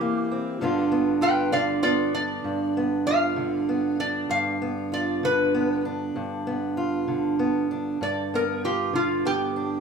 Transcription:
Already playing: E3 C4 E4 G4
0.01 A#3
0.31 C4
0.61 G2 D3 B3 D4 F4
0.92 B3
1.21 F4 B4 G5
1.52 D3 D5 F5
1.83 B3 F4 D5
2.14 D4 D5
2.44 G2
2.77 B3
3.07 F4 F5
3.36 D3
3.69 B3
4.00 D4 D5
4.29 G2 F5
4.62 B3
4.92 F4 D5
5.23 D3 B4
5.54 B3
5.85 D4
6.16 G2
6.47 B3
6.77 F4
7.08 D3
7.39 B3
7.71 D4
8.01 G2 D5
8.34 B3 A#4
8.64 F4 G4
8.93 D3 F4
9.25 B3 G4
9.56 D4

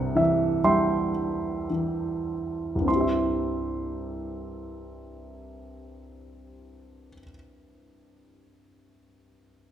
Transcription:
Already playing: C2 G2 C3 C5 F#5
0.15 E3 E5
0.64 G3 E5 G5 C6
1.70 E3
2.75 C2
2.80 G2
2.85 C4 C6
2.91 E4
2.96 G4
3.01 E5

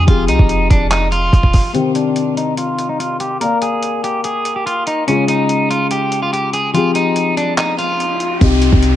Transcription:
Already playing: G#3 C#4
0.07 F1 F3 C4 F4 G4 G#4, kick, closed hi-hat
0.28 C2 D#4, closed hi-hat
0.39 F1, kick
0.49 closed hi-hat
0.70 F1 D4, kick, closed hi-hat
0.91 D#4, clap, closed hi-hat
1.12 F4, closed hi-hat
1.33 F1, kick, closed hi-hat
1.43 kick
1.53 kick, open hi-hat
1.73 C3 D#3 C4 G4, closed hi-hat
1.95 D4, closed hi-hat
2.16 closed hi-hat
2.37 D#4, closed hi-hat
2.57 F4, closed hi-hat
2.79 closed hi-hat
2.89 D#4
3.00 F4, closed hi-hat
3.20 G4, closed hi-hat
3.40 A#3 A#4 D5 F5, closed hi-hat
3.62 G#4, closed hi-hat
3.83 closed hi-hat
4.04 G4, closed hi-hat
4.24 G#4, closed hi-hat
4.45 closed hi-hat
4.56 G4
4.66 F4, closed hi-hat
4.87 D#4, closed hi-hat
5.07 C#3 G#3 C#4 F4, closed hi-hat
5.28 D#4, closed hi-hat
5.49 closed hi-hat
5.70 F4, closed hi-hat
5.91 G4, closed hi-hat
6.12 closed hi-hat
6.22 F4
6.33 G4, closed hi-hat
6.53 G#4, closed hi-hat
6.73 F3 C4 F4 G4 G#4, closed hi-hat, riser
6.95 D#4, closed hi-hat
7.16 closed hi-hat
7.37 D4, closed hi-hat
7.57 D#4, clap, closed hi-hat
7.79 F4, closed hi-hat
8.00 closed hi-hat
8.20 closed hi-hat
8.40 C2 C3 C4 D#4 G4, kick, closed hi-hat, downlifter
8.62 closed hi-hat
8.73 C2, kick
8.83 closed hi-hat

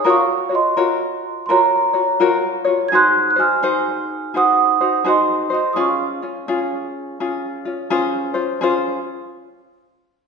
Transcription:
0.04 F4 F#4 A#4 C#5 D#6
0.09 F5 C#6
0.49 F4 F#4 C#5
0.55 D#5 C6
0.77 F4 F#4 A#4 C#5
1.46 F4 A#4 C6
1.50 F#4 C#5 A#5
1.93 F4 F#4 C#5
2.20 F4 F#4 A#4 C#5
2.65 F4 F#4 C#5
2.88 G#4 G#6
2.93 D#4 F#4 C5 C6 F#6
3.31 F#6
3.36 D#4 F#4 C5 G#5
3.40 F6
3.62 D#4 F#4 G#4 C5
4.34 D#4 F#4 G#4 C5 F#5 D#6
4.81 D#4 F#4 C5
5.04 D#4 F#4 G#4 C5 D#5
5.08 C6
5.50 D#4 F#4 C5 D#5
5.55 C6
5.73 C#4 F4 G#4 D#6
5.79 F5 C#6
6.22 C#4 F4
6.48 C#4 F4 G#4
7.20 C#4 F4 G#4
7.65 C#4 F4
7.90 C#4 F4 G#4 C5
8.34 C#4 F4 C5
8.61 C#4 F4 G#4 C5

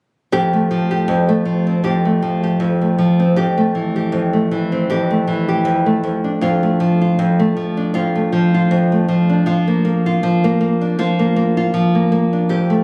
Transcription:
0.32 F2 G4
0.53 A3
0.71 F3
0.91 G4
1.08 F2
1.29 A3
1.45 F3
1.67 C4
1.84 F2 G4
2.05 A3
2.22 F3
2.43 G4
2.60 F2
2.81 A3
2.98 F3
3.20 C4
3.36 F2 G4
3.58 A3
3.75 E3
3.96 G4
4.12 F2
4.33 A3
4.51 E3
4.72 C4
4.90 F2 G4
5.11 A3
5.27 E3
5.49 G4
5.65 F2
5.86 A3
6.03 F2
6.24 D4
6.41 F2 F4
6.63 A3
6.80 F3
7.01 F4
7.19 F2
7.39 A3
7.57 F3
7.77 D4
7.94 F2 F4
8.15 A3
8.32 F3
8.54 F4
8.71 F2
8.92 A3
9.08 F3
9.29 D4
9.46 F3 F4
9.68 A#3
9.85 A#3
10.06 F4
10.23 F3
10.44 A#3
10.61 A#3
10.81 D4
10.99 F3 F4
11.19 A#3
11.36 A#3
11.57 F4
11.74 F3
11.95 A#3
12.12 A#3
12.33 D4
12.49 F2 G4
12.70 A3

